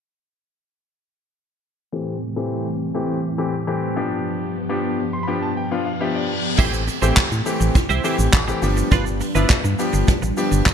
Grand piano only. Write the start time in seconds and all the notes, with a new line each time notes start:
1.92 E3 A3 C4 G4
2.36 E3 A3 C4 G4
2.94 E3 A3 C4 G4
3.38 E3 A3 C4 G4
3.67 E3 A3 C4 G4
3.96 F3 B3 D4 G4
4.69 F3 B3 D4 G4
5.13 C6
5.23 B5
5.27 F3 B3 D4 G4
5.42 A5
5.57 G5
5.71 F3 B3 D4 F4
5.86 F5
6.00 F3 B3 D4 G4 E5
6.15 D5
6.59 E3 A3 C4 G4
7.02 E3 A3 C4 G4
7.46 E3 A3 C4 G4
8.04 E3 A3 C4 G4
8.48 E3 A3 C4 G4
8.62 F3 B3 D4 G4
9.35 F3 B3 D4 E4
9.79 F3 B3 D4 G4
10.37 F3 B3 D4 G4